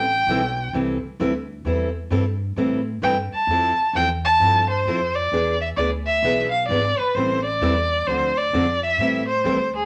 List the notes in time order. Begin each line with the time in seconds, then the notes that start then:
Already playing: A1 G5
0.27 B1 E3 G3 C4 E4 A4
0.73 C2 E3 G3 C4 E4 A4
1.03 muted upright bass stroke
1.20 D2 E3 G3 C4 E4 A4
1.65 E2 E3 G3 C4 E4 A4
2.10 G2 E3 G3 C4 E4 A4
2.56 A2 E3 G3 C4 E4 A4
3.02 G2 E3 G3 C4 E4 A4 G5
3.32 A5, muted upright bass stroke
3.47 F2 F3 C4 E4 A4
3.78 muted upright bass stroke
3.93 E2 F3 C4 E4 A4 G5
4.25 A5
4.40 G2 F3 C4 E4 A4
4.70 C5
4.85 F2 F3 C4 E4 A4
5.15 D5
5.32 E2 E3 B3 D4 G#4
5.61 E5
5.76 D2 E3 B3 D4 G#4 D5
6.06 E5
6.22 B1 E3 B3 D4 G#4
6.51 F5
6.68 G#1 E3 B3 D4 G#4 D5
6.99 B4, muted upright bass stroke
7.15 A1 E3 G3 C4 E4 A4 C5
7.45 D5
7.61 E2 E3 G3 C4 E4 A4
8.07 D2 D3 F3 C4 D4 A4 C5
8.37 D5
8.53 F2 D3 F3 C4 D4 A4
8.83 E5
8.98 A2 E3 G3 C4 E4 A4
9.28 C5
9.44 D2 E3 G3 C4 E4 A4
9.76 G#4